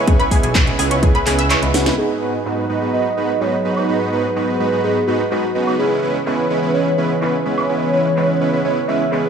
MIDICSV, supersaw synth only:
0, 0, Header, 1, 2, 480
1, 0, Start_track
1, 0, Key_signature, 5, "minor"
1, 0, Tempo, 476190
1, 76, Time_signature, 4, 2, 24, 8
1, 9367, End_track
2, 0, Start_track
2, 0, Title_t, "Supersaw synth"
2, 0, Program_c, 0, 81
2, 77, Note_on_c, 0, 49, 94
2, 77, Note_on_c, 0, 56, 84
2, 77, Note_on_c, 0, 59, 81
2, 77, Note_on_c, 0, 61, 80
2, 77, Note_on_c, 0, 64, 83
2, 77, Note_on_c, 0, 71, 97
2, 288, Note_off_c, 0, 49, 0
2, 288, Note_off_c, 0, 56, 0
2, 288, Note_off_c, 0, 59, 0
2, 288, Note_off_c, 0, 61, 0
2, 288, Note_off_c, 0, 64, 0
2, 288, Note_off_c, 0, 71, 0
2, 316, Note_on_c, 0, 59, 84
2, 316, Note_on_c, 0, 61, 82
2, 316, Note_on_c, 0, 71, 100
2, 317, Note_on_c, 0, 49, 87
2, 317, Note_on_c, 0, 56, 79
2, 317, Note_on_c, 0, 64, 83
2, 457, Note_off_c, 0, 49, 0
2, 457, Note_off_c, 0, 56, 0
2, 457, Note_off_c, 0, 59, 0
2, 457, Note_off_c, 0, 61, 0
2, 457, Note_off_c, 0, 71, 0
2, 458, Note_off_c, 0, 64, 0
2, 556, Note_on_c, 0, 49, 74
2, 556, Note_on_c, 0, 71, 82
2, 557, Note_on_c, 0, 56, 66
2, 557, Note_on_c, 0, 59, 68
2, 557, Note_on_c, 0, 61, 70
2, 557, Note_on_c, 0, 64, 66
2, 760, Note_off_c, 0, 49, 0
2, 760, Note_off_c, 0, 71, 0
2, 761, Note_off_c, 0, 56, 0
2, 761, Note_off_c, 0, 59, 0
2, 761, Note_off_c, 0, 61, 0
2, 761, Note_off_c, 0, 64, 0
2, 795, Note_on_c, 0, 49, 94
2, 795, Note_on_c, 0, 61, 84
2, 795, Note_on_c, 0, 64, 89
2, 795, Note_on_c, 0, 71, 108
2, 796, Note_on_c, 0, 56, 85
2, 796, Note_on_c, 0, 59, 86
2, 887, Note_off_c, 0, 49, 0
2, 888, Note_off_c, 0, 56, 0
2, 888, Note_off_c, 0, 59, 0
2, 888, Note_off_c, 0, 61, 0
2, 888, Note_off_c, 0, 64, 0
2, 888, Note_off_c, 0, 71, 0
2, 916, Note_on_c, 0, 56, 84
2, 916, Note_on_c, 0, 59, 82
2, 916, Note_on_c, 0, 61, 80
2, 916, Note_on_c, 0, 71, 98
2, 917, Note_on_c, 0, 49, 91
2, 917, Note_on_c, 0, 64, 82
2, 1007, Note_off_c, 0, 49, 0
2, 1007, Note_off_c, 0, 56, 0
2, 1007, Note_off_c, 0, 59, 0
2, 1007, Note_off_c, 0, 61, 0
2, 1007, Note_off_c, 0, 64, 0
2, 1007, Note_off_c, 0, 71, 0
2, 1036, Note_on_c, 0, 49, 94
2, 1036, Note_on_c, 0, 56, 89
2, 1036, Note_on_c, 0, 59, 88
2, 1036, Note_on_c, 0, 61, 89
2, 1036, Note_on_c, 0, 64, 86
2, 1036, Note_on_c, 0, 71, 103
2, 1177, Note_off_c, 0, 49, 0
2, 1177, Note_off_c, 0, 56, 0
2, 1177, Note_off_c, 0, 59, 0
2, 1177, Note_off_c, 0, 61, 0
2, 1177, Note_off_c, 0, 64, 0
2, 1177, Note_off_c, 0, 71, 0
2, 1274, Note_on_c, 0, 49, 96
2, 1274, Note_on_c, 0, 56, 92
2, 1274, Note_on_c, 0, 71, 109
2, 1275, Note_on_c, 0, 59, 88
2, 1275, Note_on_c, 0, 61, 87
2, 1275, Note_on_c, 0, 64, 87
2, 1416, Note_off_c, 0, 49, 0
2, 1416, Note_off_c, 0, 56, 0
2, 1416, Note_off_c, 0, 61, 0
2, 1416, Note_off_c, 0, 64, 0
2, 1416, Note_off_c, 0, 71, 0
2, 1417, Note_off_c, 0, 59, 0
2, 1515, Note_on_c, 0, 49, 81
2, 1515, Note_on_c, 0, 56, 72
2, 1515, Note_on_c, 0, 59, 72
2, 1515, Note_on_c, 0, 61, 74
2, 1515, Note_on_c, 0, 64, 76
2, 1515, Note_on_c, 0, 71, 88
2, 1656, Note_off_c, 0, 61, 0
2, 1657, Note_off_c, 0, 49, 0
2, 1657, Note_off_c, 0, 56, 0
2, 1657, Note_off_c, 0, 59, 0
2, 1657, Note_off_c, 0, 64, 0
2, 1657, Note_off_c, 0, 71, 0
2, 1755, Note_on_c, 0, 61, 73
2, 1756, Note_on_c, 0, 44, 81
2, 1756, Note_on_c, 0, 56, 75
2, 1756, Note_on_c, 0, 59, 74
2, 1756, Note_on_c, 0, 64, 71
2, 1756, Note_on_c, 0, 71, 89
2, 1859, Note_off_c, 0, 44, 0
2, 1859, Note_off_c, 0, 56, 0
2, 1859, Note_off_c, 0, 59, 0
2, 1859, Note_off_c, 0, 61, 0
2, 1859, Note_off_c, 0, 64, 0
2, 1859, Note_off_c, 0, 71, 0
2, 1875, Note_on_c, 0, 61, 70
2, 1876, Note_on_c, 0, 44, 79
2, 1876, Note_on_c, 0, 56, 70
2, 1876, Note_on_c, 0, 59, 70
2, 1876, Note_on_c, 0, 64, 73
2, 1876, Note_on_c, 0, 71, 86
2, 1967, Note_off_c, 0, 44, 0
2, 1967, Note_off_c, 0, 56, 0
2, 1967, Note_off_c, 0, 59, 0
2, 1967, Note_off_c, 0, 61, 0
2, 1967, Note_off_c, 0, 64, 0
2, 1967, Note_off_c, 0, 71, 0
2, 1994, Note_on_c, 0, 56, 77
2, 1995, Note_on_c, 0, 44, 84
2, 1995, Note_on_c, 0, 59, 77
2, 1995, Note_on_c, 0, 63, 78
2, 1995, Note_on_c, 0, 66, 78
2, 1995, Note_on_c, 0, 71, 93
2, 2207, Note_off_c, 0, 44, 0
2, 2207, Note_off_c, 0, 56, 0
2, 2207, Note_off_c, 0, 59, 0
2, 2207, Note_off_c, 0, 63, 0
2, 2207, Note_off_c, 0, 66, 0
2, 2207, Note_off_c, 0, 71, 0
2, 2235, Note_on_c, 0, 44, 82
2, 2235, Note_on_c, 0, 56, 74
2, 2235, Note_on_c, 0, 59, 80
2, 2235, Note_on_c, 0, 63, 74
2, 2235, Note_on_c, 0, 66, 77
2, 2236, Note_on_c, 0, 71, 96
2, 2377, Note_off_c, 0, 44, 0
2, 2377, Note_off_c, 0, 56, 0
2, 2377, Note_off_c, 0, 59, 0
2, 2377, Note_off_c, 0, 63, 0
2, 2377, Note_off_c, 0, 66, 0
2, 2377, Note_off_c, 0, 71, 0
2, 2476, Note_on_c, 0, 44, 68
2, 2476, Note_on_c, 0, 56, 64
2, 2476, Note_on_c, 0, 59, 64
2, 2476, Note_on_c, 0, 63, 63
2, 2476, Note_on_c, 0, 66, 64
2, 2476, Note_on_c, 0, 71, 76
2, 2680, Note_off_c, 0, 44, 0
2, 2680, Note_off_c, 0, 56, 0
2, 2680, Note_off_c, 0, 59, 0
2, 2680, Note_off_c, 0, 63, 0
2, 2680, Note_off_c, 0, 66, 0
2, 2680, Note_off_c, 0, 71, 0
2, 2715, Note_on_c, 0, 44, 90
2, 2715, Note_on_c, 0, 56, 82
2, 2715, Note_on_c, 0, 59, 80
2, 2715, Note_on_c, 0, 63, 82
2, 2715, Note_on_c, 0, 66, 86
2, 2715, Note_on_c, 0, 71, 99
2, 2807, Note_off_c, 0, 44, 0
2, 2807, Note_off_c, 0, 56, 0
2, 2807, Note_off_c, 0, 71, 0
2, 2808, Note_off_c, 0, 59, 0
2, 2808, Note_off_c, 0, 63, 0
2, 2808, Note_off_c, 0, 66, 0
2, 2836, Note_on_c, 0, 59, 76
2, 2837, Note_on_c, 0, 44, 85
2, 2837, Note_on_c, 0, 56, 79
2, 2837, Note_on_c, 0, 63, 74
2, 2837, Note_on_c, 0, 66, 78
2, 2837, Note_on_c, 0, 71, 92
2, 2927, Note_off_c, 0, 44, 0
2, 2927, Note_off_c, 0, 56, 0
2, 2927, Note_off_c, 0, 59, 0
2, 2927, Note_off_c, 0, 63, 0
2, 2927, Note_off_c, 0, 66, 0
2, 2927, Note_off_c, 0, 71, 0
2, 2956, Note_on_c, 0, 44, 91
2, 2956, Note_on_c, 0, 56, 81
2, 2956, Note_on_c, 0, 59, 83
2, 2956, Note_on_c, 0, 63, 83
2, 2956, Note_on_c, 0, 66, 82
2, 2956, Note_on_c, 0, 71, 97
2, 3097, Note_off_c, 0, 44, 0
2, 3097, Note_off_c, 0, 56, 0
2, 3097, Note_off_c, 0, 59, 0
2, 3097, Note_off_c, 0, 63, 0
2, 3097, Note_off_c, 0, 66, 0
2, 3097, Note_off_c, 0, 71, 0
2, 3196, Note_on_c, 0, 44, 91
2, 3196, Note_on_c, 0, 56, 83
2, 3196, Note_on_c, 0, 59, 85
2, 3196, Note_on_c, 0, 63, 82
2, 3196, Note_on_c, 0, 66, 80
2, 3196, Note_on_c, 0, 71, 101
2, 3337, Note_off_c, 0, 44, 0
2, 3337, Note_off_c, 0, 56, 0
2, 3337, Note_off_c, 0, 59, 0
2, 3337, Note_off_c, 0, 63, 0
2, 3337, Note_off_c, 0, 66, 0
2, 3337, Note_off_c, 0, 71, 0
2, 3436, Note_on_c, 0, 63, 67
2, 3437, Note_on_c, 0, 44, 73
2, 3437, Note_on_c, 0, 56, 71
2, 3437, Note_on_c, 0, 59, 67
2, 3437, Note_on_c, 0, 66, 69
2, 3437, Note_on_c, 0, 71, 84
2, 3577, Note_off_c, 0, 44, 0
2, 3577, Note_off_c, 0, 59, 0
2, 3577, Note_off_c, 0, 63, 0
2, 3577, Note_off_c, 0, 66, 0
2, 3577, Note_off_c, 0, 71, 0
2, 3578, Note_off_c, 0, 56, 0
2, 3675, Note_on_c, 0, 44, 77
2, 3675, Note_on_c, 0, 59, 67
2, 3675, Note_on_c, 0, 63, 70
2, 3675, Note_on_c, 0, 66, 67
2, 3675, Note_on_c, 0, 71, 84
2, 3676, Note_on_c, 0, 56, 68
2, 3779, Note_off_c, 0, 44, 0
2, 3779, Note_off_c, 0, 56, 0
2, 3779, Note_off_c, 0, 59, 0
2, 3779, Note_off_c, 0, 63, 0
2, 3779, Note_off_c, 0, 66, 0
2, 3779, Note_off_c, 0, 71, 0
2, 3797, Note_on_c, 0, 44, 77
2, 3797, Note_on_c, 0, 56, 68
2, 3797, Note_on_c, 0, 59, 67
2, 3797, Note_on_c, 0, 63, 67
2, 3797, Note_on_c, 0, 66, 67
2, 3797, Note_on_c, 0, 71, 85
2, 3887, Note_off_c, 0, 44, 0
2, 3887, Note_off_c, 0, 56, 0
2, 3887, Note_off_c, 0, 59, 0
2, 3887, Note_off_c, 0, 63, 0
2, 3887, Note_off_c, 0, 66, 0
2, 3887, Note_off_c, 0, 71, 0
2, 3915, Note_on_c, 0, 71, 92
2, 3916, Note_on_c, 0, 44, 84
2, 3916, Note_on_c, 0, 56, 78
2, 3916, Note_on_c, 0, 59, 77
2, 3916, Note_on_c, 0, 63, 77
2, 3916, Note_on_c, 0, 66, 79
2, 4127, Note_off_c, 0, 44, 0
2, 4127, Note_off_c, 0, 56, 0
2, 4127, Note_off_c, 0, 59, 0
2, 4127, Note_off_c, 0, 63, 0
2, 4127, Note_off_c, 0, 66, 0
2, 4127, Note_off_c, 0, 71, 0
2, 4155, Note_on_c, 0, 44, 84
2, 4155, Note_on_c, 0, 56, 76
2, 4155, Note_on_c, 0, 59, 77
2, 4155, Note_on_c, 0, 63, 76
2, 4155, Note_on_c, 0, 66, 76
2, 4155, Note_on_c, 0, 71, 96
2, 4296, Note_off_c, 0, 56, 0
2, 4296, Note_off_c, 0, 66, 0
2, 4296, Note_off_c, 0, 71, 0
2, 4297, Note_off_c, 0, 44, 0
2, 4297, Note_off_c, 0, 59, 0
2, 4297, Note_off_c, 0, 63, 0
2, 4395, Note_on_c, 0, 44, 70
2, 4395, Note_on_c, 0, 56, 66
2, 4395, Note_on_c, 0, 59, 63
2, 4395, Note_on_c, 0, 63, 64
2, 4395, Note_on_c, 0, 66, 63
2, 4395, Note_on_c, 0, 71, 78
2, 4600, Note_off_c, 0, 44, 0
2, 4600, Note_off_c, 0, 56, 0
2, 4600, Note_off_c, 0, 59, 0
2, 4600, Note_off_c, 0, 63, 0
2, 4600, Note_off_c, 0, 66, 0
2, 4600, Note_off_c, 0, 71, 0
2, 4635, Note_on_c, 0, 44, 92
2, 4635, Note_on_c, 0, 56, 86
2, 4635, Note_on_c, 0, 66, 82
2, 4636, Note_on_c, 0, 59, 83
2, 4636, Note_on_c, 0, 63, 84
2, 4636, Note_on_c, 0, 71, 98
2, 4728, Note_off_c, 0, 44, 0
2, 4728, Note_off_c, 0, 56, 0
2, 4728, Note_off_c, 0, 59, 0
2, 4728, Note_off_c, 0, 63, 0
2, 4728, Note_off_c, 0, 66, 0
2, 4728, Note_off_c, 0, 71, 0
2, 4757, Note_on_c, 0, 44, 86
2, 4757, Note_on_c, 0, 56, 76
2, 4757, Note_on_c, 0, 59, 77
2, 4757, Note_on_c, 0, 63, 78
2, 4757, Note_on_c, 0, 66, 75
2, 4757, Note_on_c, 0, 71, 92
2, 4847, Note_off_c, 0, 44, 0
2, 4847, Note_off_c, 0, 56, 0
2, 4847, Note_off_c, 0, 59, 0
2, 4847, Note_off_c, 0, 63, 0
2, 4847, Note_off_c, 0, 66, 0
2, 4847, Note_off_c, 0, 71, 0
2, 4875, Note_on_c, 0, 59, 82
2, 4876, Note_on_c, 0, 44, 88
2, 4876, Note_on_c, 0, 56, 79
2, 4876, Note_on_c, 0, 63, 82
2, 4876, Note_on_c, 0, 66, 78
2, 4876, Note_on_c, 0, 71, 97
2, 5017, Note_off_c, 0, 44, 0
2, 5017, Note_off_c, 0, 56, 0
2, 5017, Note_off_c, 0, 59, 0
2, 5017, Note_off_c, 0, 63, 0
2, 5017, Note_off_c, 0, 66, 0
2, 5017, Note_off_c, 0, 71, 0
2, 5114, Note_on_c, 0, 56, 83
2, 5115, Note_on_c, 0, 44, 92
2, 5115, Note_on_c, 0, 59, 84
2, 5115, Note_on_c, 0, 63, 85
2, 5115, Note_on_c, 0, 66, 82
2, 5115, Note_on_c, 0, 71, 105
2, 5256, Note_off_c, 0, 56, 0
2, 5256, Note_off_c, 0, 59, 0
2, 5256, Note_off_c, 0, 63, 0
2, 5256, Note_off_c, 0, 66, 0
2, 5256, Note_off_c, 0, 71, 0
2, 5257, Note_off_c, 0, 44, 0
2, 5354, Note_on_c, 0, 44, 78
2, 5354, Note_on_c, 0, 71, 83
2, 5355, Note_on_c, 0, 56, 68
2, 5355, Note_on_c, 0, 59, 67
2, 5355, Note_on_c, 0, 63, 66
2, 5355, Note_on_c, 0, 66, 68
2, 5496, Note_off_c, 0, 44, 0
2, 5496, Note_off_c, 0, 56, 0
2, 5496, Note_off_c, 0, 66, 0
2, 5496, Note_off_c, 0, 71, 0
2, 5497, Note_off_c, 0, 59, 0
2, 5497, Note_off_c, 0, 63, 0
2, 5594, Note_on_c, 0, 49, 78
2, 5594, Note_on_c, 0, 63, 66
2, 5594, Note_on_c, 0, 71, 80
2, 5595, Note_on_c, 0, 56, 69
2, 5595, Note_on_c, 0, 59, 68
2, 5595, Note_on_c, 0, 66, 67
2, 5698, Note_off_c, 0, 49, 0
2, 5698, Note_off_c, 0, 56, 0
2, 5698, Note_off_c, 0, 59, 0
2, 5698, Note_off_c, 0, 63, 0
2, 5698, Note_off_c, 0, 66, 0
2, 5698, Note_off_c, 0, 71, 0
2, 5715, Note_on_c, 0, 59, 68
2, 5716, Note_on_c, 0, 49, 75
2, 5716, Note_on_c, 0, 56, 67
2, 5716, Note_on_c, 0, 63, 69
2, 5716, Note_on_c, 0, 66, 70
2, 5716, Note_on_c, 0, 71, 84
2, 5806, Note_off_c, 0, 59, 0
2, 5807, Note_off_c, 0, 49, 0
2, 5807, Note_off_c, 0, 56, 0
2, 5807, Note_off_c, 0, 63, 0
2, 5807, Note_off_c, 0, 66, 0
2, 5807, Note_off_c, 0, 71, 0
2, 5834, Note_on_c, 0, 49, 85
2, 5834, Note_on_c, 0, 56, 82
2, 5834, Note_on_c, 0, 64, 78
2, 5834, Note_on_c, 0, 71, 92
2, 5835, Note_on_c, 0, 59, 78
2, 5835, Note_on_c, 0, 61, 78
2, 6046, Note_off_c, 0, 49, 0
2, 6046, Note_off_c, 0, 56, 0
2, 6046, Note_off_c, 0, 71, 0
2, 6047, Note_off_c, 0, 59, 0
2, 6047, Note_off_c, 0, 61, 0
2, 6047, Note_off_c, 0, 64, 0
2, 6074, Note_on_c, 0, 49, 84
2, 6074, Note_on_c, 0, 56, 81
2, 6074, Note_on_c, 0, 59, 78
2, 6074, Note_on_c, 0, 61, 80
2, 6074, Note_on_c, 0, 71, 94
2, 6075, Note_on_c, 0, 64, 80
2, 6216, Note_off_c, 0, 49, 0
2, 6216, Note_off_c, 0, 56, 0
2, 6216, Note_off_c, 0, 59, 0
2, 6216, Note_off_c, 0, 61, 0
2, 6216, Note_off_c, 0, 64, 0
2, 6216, Note_off_c, 0, 71, 0
2, 6313, Note_on_c, 0, 49, 70
2, 6313, Note_on_c, 0, 61, 61
2, 6313, Note_on_c, 0, 71, 77
2, 6314, Note_on_c, 0, 56, 65
2, 6314, Note_on_c, 0, 59, 63
2, 6314, Note_on_c, 0, 64, 65
2, 6519, Note_off_c, 0, 49, 0
2, 6519, Note_off_c, 0, 56, 0
2, 6519, Note_off_c, 0, 59, 0
2, 6519, Note_off_c, 0, 61, 0
2, 6519, Note_off_c, 0, 64, 0
2, 6519, Note_off_c, 0, 71, 0
2, 6552, Note_on_c, 0, 49, 92
2, 6552, Note_on_c, 0, 71, 101
2, 6553, Note_on_c, 0, 56, 82
2, 6553, Note_on_c, 0, 59, 84
2, 6553, Note_on_c, 0, 61, 84
2, 6553, Note_on_c, 0, 64, 83
2, 6646, Note_off_c, 0, 49, 0
2, 6646, Note_off_c, 0, 56, 0
2, 6646, Note_off_c, 0, 61, 0
2, 6646, Note_off_c, 0, 64, 0
2, 6646, Note_off_c, 0, 71, 0
2, 6647, Note_off_c, 0, 59, 0
2, 6675, Note_on_c, 0, 59, 75
2, 6676, Note_on_c, 0, 49, 85
2, 6676, Note_on_c, 0, 56, 78
2, 6676, Note_on_c, 0, 61, 80
2, 6676, Note_on_c, 0, 64, 77
2, 6676, Note_on_c, 0, 71, 94
2, 6767, Note_off_c, 0, 49, 0
2, 6767, Note_off_c, 0, 56, 0
2, 6767, Note_off_c, 0, 59, 0
2, 6767, Note_off_c, 0, 61, 0
2, 6767, Note_off_c, 0, 64, 0
2, 6767, Note_off_c, 0, 71, 0
2, 6793, Note_on_c, 0, 56, 82
2, 6793, Note_on_c, 0, 59, 84
2, 6793, Note_on_c, 0, 71, 98
2, 6794, Note_on_c, 0, 49, 91
2, 6794, Note_on_c, 0, 61, 82
2, 6794, Note_on_c, 0, 64, 81
2, 6936, Note_off_c, 0, 49, 0
2, 6936, Note_off_c, 0, 56, 0
2, 6936, Note_off_c, 0, 59, 0
2, 6936, Note_off_c, 0, 61, 0
2, 6936, Note_off_c, 0, 64, 0
2, 6936, Note_off_c, 0, 71, 0
2, 7033, Note_on_c, 0, 49, 92
2, 7033, Note_on_c, 0, 56, 85
2, 7033, Note_on_c, 0, 59, 82
2, 7033, Note_on_c, 0, 61, 83
2, 7033, Note_on_c, 0, 64, 85
2, 7033, Note_on_c, 0, 71, 104
2, 7175, Note_off_c, 0, 49, 0
2, 7175, Note_off_c, 0, 64, 0
2, 7176, Note_off_c, 0, 56, 0
2, 7176, Note_off_c, 0, 59, 0
2, 7176, Note_off_c, 0, 61, 0
2, 7176, Note_off_c, 0, 71, 0
2, 7273, Note_on_c, 0, 49, 74
2, 7273, Note_on_c, 0, 59, 68
2, 7273, Note_on_c, 0, 61, 69
2, 7273, Note_on_c, 0, 64, 71
2, 7273, Note_on_c, 0, 71, 86
2, 7274, Note_on_c, 0, 56, 67
2, 7416, Note_off_c, 0, 49, 0
2, 7416, Note_off_c, 0, 56, 0
2, 7416, Note_off_c, 0, 59, 0
2, 7416, Note_off_c, 0, 61, 0
2, 7416, Note_off_c, 0, 64, 0
2, 7416, Note_off_c, 0, 71, 0
2, 7514, Note_on_c, 0, 49, 78
2, 7514, Note_on_c, 0, 56, 67
2, 7514, Note_on_c, 0, 59, 70
2, 7514, Note_on_c, 0, 61, 68
2, 7514, Note_on_c, 0, 64, 69
2, 7514, Note_on_c, 0, 71, 84
2, 7618, Note_off_c, 0, 49, 0
2, 7618, Note_off_c, 0, 56, 0
2, 7618, Note_off_c, 0, 59, 0
2, 7618, Note_off_c, 0, 61, 0
2, 7618, Note_off_c, 0, 64, 0
2, 7618, Note_off_c, 0, 71, 0
2, 7635, Note_on_c, 0, 49, 72
2, 7635, Note_on_c, 0, 56, 67
2, 7635, Note_on_c, 0, 61, 67
2, 7635, Note_on_c, 0, 64, 69
2, 7635, Note_on_c, 0, 71, 82
2, 7636, Note_on_c, 0, 59, 67
2, 7726, Note_off_c, 0, 49, 0
2, 7726, Note_off_c, 0, 56, 0
2, 7726, Note_off_c, 0, 61, 0
2, 7726, Note_off_c, 0, 64, 0
2, 7726, Note_off_c, 0, 71, 0
2, 7727, Note_off_c, 0, 59, 0
2, 7755, Note_on_c, 0, 49, 84
2, 7755, Note_on_c, 0, 56, 82
2, 7755, Note_on_c, 0, 59, 78
2, 7755, Note_on_c, 0, 61, 81
2, 7755, Note_on_c, 0, 64, 80
2, 7755, Note_on_c, 0, 71, 91
2, 7967, Note_off_c, 0, 49, 0
2, 7967, Note_off_c, 0, 56, 0
2, 7967, Note_off_c, 0, 59, 0
2, 7967, Note_off_c, 0, 61, 0
2, 7967, Note_off_c, 0, 64, 0
2, 7967, Note_off_c, 0, 71, 0
2, 7995, Note_on_c, 0, 49, 85
2, 7995, Note_on_c, 0, 56, 79
2, 7995, Note_on_c, 0, 59, 79
2, 7995, Note_on_c, 0, 61, 77
2, 7995, Note_on_c, 0, 64, 80
2, 7995, Note_on_c, 0, 71, 95
2, 8136, Note_off_c, 0, 49, 0
2, 8136, Note_off_c, 0, 56, 0
2, 8136, Note_off_c, 0, 59, 0
2, 8136, Note_off_c, 0, 61, 0
2, 8136, Note_off_c, 0, 71, 0
2, 8137, Note_off_c, 0, 64, 0
2, 8235, Note_on_c, 0, 49, 69
2, 8235, Note_on_c, 0, 56, 66
2, 8235, Note_on_c, 0, 59, 66
2, 8235, Note_on_c, 0, 61, 63
2, 8235, Note_on_c, 0, 64, 62
2, 8235, Note_on_c, 0, 71, 78
2, 8440, Note_off_c, 0, 49, 0
2, 8440, Note_off_c, 0, 56, 0
2, 8440, Note_off_c, 0, 59, 0
2, 8440, Note_off_c, 0, 61, 0
2, 8440, Note_off_c, 0, 64, 0
2, 8440, Note_off_c, 0, 71, 0
2, 8475, Note_on_c, 0, 49, 90
2, 8475, Note_on_c, 0, 56, 84
2, 8475, Note_on_c, 0, 59, 83
2, 8475, Note_on_c, 0, 61, 87
2, 8475, Note_on_c, 0, 64, 83
2, 8475, Note_on_c, 0, 71, 101
2, 8567, Note_off_c, 0, 56, 0
2, 8567, Note_off_c, 0, 59, 0
2, 8567, Note_off_c, 0, 61, 0
2, 8568, Note_off_c, 0, 49, 0
2, 8568, Note_off_c, 0, 64, 0
2, 8568, Note_off_c, 0, 71, 0
2, 8595, Note_on_c, 0, 56, 78
2, 8595, Note_on_c, 0, 59, 77
2, 8595, Note_on_c, 0, 64, 79
2, 8595, Note_on_c, 0, 71, 90
2, 8596, Note_on_c, 0, 49, 85
2, 8596, Note_on_c, 0, 61, 76
2, 8686, Note_off_c, 0, 56, 0
2, 8686, Note_off_c, 0, 59, 0
2, 8686, Note_off_c, 0, 64, 0
2, 8686, Note_off_c, 0, 71, 0
2, 8687, Note_off_c, 0, 49, 0
2, 8687, Note_off_c, 0, 61, 0
2, 8715, Note_on_c, 0, 59, 82
2, 8716, Note_on_c, 0, 49, 89
2, 8716, Note_on_c, 0, 56, 78
2, 8716, Note_on_c, 0, 61, 82
2, 8716, Note_on_c, 0, 64, 81
2, 8716, Note_on_c, 0, 71, 98
2, 8857, Note_off_c, 0, 49, 0
2, 8857, Note_off_c, 0, 56, 0
2, 8857, Note_off_c, 0, 59, 0
2, 8857, Note_off_c, 0, 61, 0
2, 8857, Note_off_c, 0, 64, 0
2, 8857, Note_off_c, 0, 71, 0
2, 8955, Note_on_c, 0, 49, 92
2, 8955, Note_on_c, 0, 56, 88
2, 8955, Note_on_c, 0, 59, 80
2, 8955, Note_on_c, 0, 61, 85
2, 8955, Note_on_c, 0, 64, 84
2, 8955, Note_on_c, 0, 71, 100
2, 9096, Note_off_c, 0, 56, 0
2, 9096, Note_off_c, 0, 59, 0
2, 9096, Note_off_c, 0, 61, 0
2, 9096, Note_off_c, 0, 64, 0
2, 9097, Note_off_c, 0, 49, 0
2, 9097, Note_off_c, 0, 71, 0
2, 9194, Note_on_c, 0, 64, 69
2, 9195, Note_on_c, 0, 49, 75
2, 9195, Note_on_c, 0, 56, 68
2, 9195, Note_on_c, 0, 59, 68
2, 9195, Note_on_c, 0, 61, 72
2, 9195, Note_on_c, 0, 71, 84
2, 9336, Note_off_c, 0, 49, 0
2, 9336, Note_off_c, 0, 56, 0
2, 9336, Note_off_c, 0, 59, 0
2, 9336, Note_off_c, 0, 61, 0
2, 9336, Note_off_c, 0, 64, 0
2, 9336, Note_off_c, 0, 71, 0
2, 9367, End_track
0, 0, End_of_file